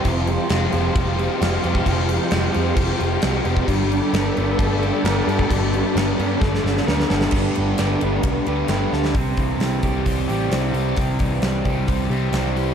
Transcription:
<<
  \new Staff \with { instrumentName = "Analog synth pad" } { \time 4/4 \key c \major \tempo 4 = 132 << { <f'' c'''>1~ | <f'' c'''>1 | <a' d'' b''>1~ | <a' d'' b''>1 |
r1 | r1 | r1 | } \\ { g''1 | g''1 | g''1~ | g''1 |
r1 | r1 | r1 | } >> }
  \new Staff \with { instrumentName = "Clean electric guitar" } { \time 4/4 \key c \major f8 aes8 g'8 aes8 f8 aes8 g'8 c'8 | f8 aes8 g'8 aes8 f8 aes8 g'8 c'8 | g8 d'8 b'8 d'8 a8 d'8 b'8 g'8 | g8 d'8 b'8 d'8 a8 d'8 b'8 g'8 |
<g a d' g' b'>4 <a d' g' b'>8 <d' g' b'>4 <d' g' b'>8 <a d' g' b'>4 | c8 e8 g8 g'8 c'8 g'8 c'8 e8 | c8 e8 g8 g'8 c'8 g'8 c'8 e8 | }
  \new Staff \with { instrumentName = "Overdriven electric guitar" } { \time 4/4 \key c \major f,4 aes8 c'8 g'8 c'8 aes8 g'8 | f,4 aes8 c'8 g'8 c'8 aes8 g'8 | g4 b8 d'8 a'8 d'8 b8 a'8 | g4 b8 d'8 a'8 d'8 b8 a'8 |
<g, d g b d' g'>4 <g b d' g'>4. <g b d' g'>8 <g b d' g'>8 <g b d' g'>8 | c8 e8 e8 g8 g'8 g8 e'8 g'8 | c8 e8 e8 g8 g'8 g8 e'8 g'8 | }
  \new Staff \with { instrumentName = "Distorted electric guitar" } { \clef bass \time 4/4 \key c \major <f, c f>4. <f, c f>4. <f, c f>4 | <f, c f>4. <f, c f>4. <f, c f>4 | <g, d g>4. <g, d g>4. <g, d g>4 | <g, d g>4. <g, d g>4. <g, d g>4 |
<g, d g>8 <g, d g>8 <g, d g>8 <g, d g>8 <g, d g>8 <g, d g>8 <g, d g>8 <g, d g>8 | <c g c'>2~ <c g c'>8 <c g c'>8 <c g c'>4 | <c g c'>2~ <c g c'>8 <c g c'>8 <c g c'>4 | }
  \new Staff \with { instrumentName = "Picked electric bass" } { \clef bass \time 4/4 \key c \major f,,4 f,,8 f,,8 f,,4 f,,8 f,8 | f,,4 f,,8 f,8 f,,8 f,,8 c,8 f,,8 | g,,4 g,,8 g,,8 g,,4 g,,8 g,8 | g,,4 g,,8 g,8 g,,8 g,,8 d,8 g,,8 |
g,,8 g,,8 g,,8 g,,8 c,8 d,8 g,,8 d,8 | c,8 c,8 c,8 c,8 c,8 a,,8 c,8 c,8 | c,8 c,8 c,8 c,8 c,8 c,8 c,4 | }
  \new DrumStaff \with { instrumentName = "Drums" } \drummode { \time 4/4 <cymc bd>8 cymc8 <cymc sn>8 cymc8 <cymc bd>8 cymc8 <cymc sn>8 cymc16 bd16 | <cymc bd>8 cymc8 <cymc sn>8 cymc8 <cymc bd>8 cymc8 <cymc sn>8 cymc16 bd16 | <cymc bd>8 cymc8 <cymc sn>8 cymc8 <cymc bd>8 cymc8 <cymc sn>8 cymc16 bd16 | <cymc bd>8 cymc8 <cymc sn>8 cymc8 <bd sn>16 sn16 sn16 sn16 sn16 sn16 sn16 sn16 |
<cymc bd>8 cymr8 <cymr sn>8 cymr8 <bd cymr>8 cymr8 <cymr sn>8 sn16 sn16 | <hho bd>8 <hho bd>8 <hho sn>8 <hho bd>8 <hho bd>8 hho8 <hho sn>8 hho8 | <hho bd>8 <hho bd>8 <hho sn>8 <hho bd>8 <hho bd>8 hho8 <hho sn>8 hho8 | }
>>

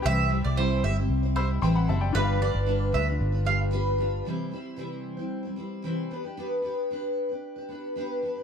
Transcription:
<<
  \new Staff \with { instrumentName = "Upright piano" } { \time 4/4 \key c \lydian \tempo 4 = 114 << { r2 r8 <b'' e'''>8 <g'' c'''>16 <fis'' b''>16 <e'' a''>16 <d'' g''>16~ | <d'' g''>16 r2. r8. | r1 | r1 | } \\ { <g' c'' e''>1 | <d' f' g' b' e'' f''>1 | r1 | r1 | } >> }
  \new Staff \with { instrumentName = "Mandolin" } { \time 4/4 \key c \lydian e''8 r16 d''16 c''8 e''16 r8. c''16 r4 r16 | b'8 d''8. r16 e''16 r8. f''16 r4 r16 | r1 | r1 | }
  \new Staff \with { instrumentName = "Steel-string acoustic guitar" } { \time 4/4 \key c \lydian <c e g c' e' c''>8 <g c' e' c''>8 <c e g c' e' c''>8 <g c' e' c''>16 <g c' e' c''>8 <g c' e' c''>16 <g c' e' c''>8 <c e g c' e' c''>8 <g c' e' c''>8 | <g d' f' b'>8 <g d' f' b'>8 <g d' f' b'>8 <g d' f' b'>16 <d' f' b'>8 <d' f' b'>16 <g d' f' b'>8 <g d' f' b'>8 <g d' f' b'>8 | <c e g c' e' c''>8 <g c' e' c''>8 <c e g c' e' c''>8. <g c' e' c''>8 <g c' e' c''>16 <g c' e' c''>8 <c e g c' e' c''>8 <b d' g' b'>16 <d' g' b'>16 | <b d' g' b'>8 <b d' g' b'>8 <b d' g' b'>8. <d' g' b'>8 <d' g' b'>16 <b d' g' b'>8 <b d' g' b'>8 <b d' g' b'>16 <d' g' b'>16 | }
  \new Staff \with { instrumentName = "Fingered electric bass" } { \clef bass \time 4/4 \key c \lydian c,8. c,8. g,,8 c,4 a,,8 fis,,8 | g,,8. g,,8. d,8 g,,2 | r1 | r1 | }
>>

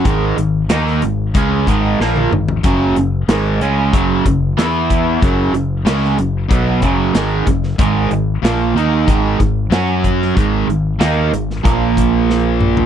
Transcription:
<<
  \new Staff \with { instrumentName = "Distorted electric guitar" } { \clef bass \time 4/4 \key aes \mixolydian \tempo 4 = 93 <aes, ees aes>8 <aes, ees>8 <ees bes ees'>8 <aes, ees>8 <des aes des'>8 <aes, ees aes>8 <bes, f bes>8 <aes, ees>8 | <ges, des ges>8 <ges, des>8 <aes, ees aes>8 <des aes des'>8 <ges, des ges>8 <ges, des>8 <e b e'>4 | <ges, des ges>8 <ges, des>8 <des aes des'>8 <ges, des>8 <ces ges ces'>8 <ges, des ges>8 <aes, ees aes>8 <ges, des>8 | <aes, ees aes>8 <aes, ees>8 <bes, f bes>8 <ees bes ees'>8 <aes, ees aes>8 <aes, ees>8 <ges des' ges'>4 |
<aes, ees aes>8 <aes, ees>8 <ees bes ees'>8 <aes, ees>8 <bes, f bes>2 | }
  \new Staff \with { instrumentName = "Overdriven electric guitar" } { \clef bass \time 4/4 \key aes \mixolydian <aes, ees aes>8 <aes, ees>8 <ees bes ees'>8 <aes, ees>8 <des aes des'>8 <aes, ees aes>8 <bes, f bes>8 <aes, ees>8 | <ges, des ges>8 <ges, des>8 <aes, ees aes>8 <des aes des'>8 <ges, des ges>8 <ges, des>8 <e b e'>4 | <ges, des ges>8 <ges, des>8 <des aes des'>8 <ges, des>8 <ces ges ces'>8 <ges, des ges>8 <aes, ees aes>8 <ges, des>8 | <aes, ees aes>8 <aes, ees>8 <bes, f bes>8 <ees bes ees'>8 <aes, ees aes>8 <aes, ees>8 <ges des' ges'>4 |
<aes, ees aes>8 <aes, ees>8 <ees bes ees'>8 <aes, ees>8 <bes, f bes>2 | }
  \new Staff \with { instrumentName = "Fingered electric bass" } { \clef bass \time 4/4 \key aes \mixolydian aes,,8 aes,,8 ees,8 aes,,8 des,8 aes,,8 bes,,8 aes,,8 | ges,,8 ges,,8 aes,,8 des,8 ges,,8 ges,,8 e,4 | ges,,8 ges,,8 des,8 ges,,8 ces,8 ges,,8 aes,,8 ges,,8 | aes,,8 aes,,8 bes,,8 ees,8 aes,,8 aes,,8 ges,4 |
aes,,8 aes,,8 ees,8 aes,,8 bes,,2 | }
  \new DrumStaff \with { instrumentName = "Drums" } \drummode { \time 4/4 <hh bd>8 hh8 <hh sn>16 sn16 hh8 <hh bd>8 <hh bd>8 sn16 tommh16 toml16 tomfh16 | <hh bd>8 hh8 <hh sn>8 hh8 <hh bd>8 <hh bd>8 <hh sn>8 <hh bd>8 | <hh bd>8 hh8 <hh sn>16 sn16 hh8 <hh bd>8 <hh bd>8 <hh sn>8 <hh bd>16 sn16 | <hh bd>8 hh8 <hh sn>8 hh8 <hh bd>8 <hh bd>8 <hh sn>8 <hh bd>16 sn16 |
<hh bd>8 hh8 <hh sn>8 hh16 sn16 <hh bd>8 <hh bd>8 sn8 toml16 tomfh16 | }
>>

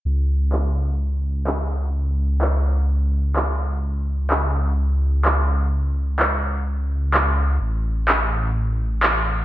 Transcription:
<<
  \new Staff \with { instrumentName = "Detuned saw bass" } { \clef bass \time 4/4 \key a \lydian \tempo 4 = 127 cis,1~ | cis,1~ | cis,1~ | cis,1 |
a,,1 | }
  \new DrumStaff \with { instrumentName = "Drums" } \drummode { \time 4/4 r4 hc4 r4 hc4 | r4 hc4 r4 hc4 | r4 hc4 r4 hc4 | r4 hc4 r4 hc4 |
r4 hc4 r4 hc4 | }
>>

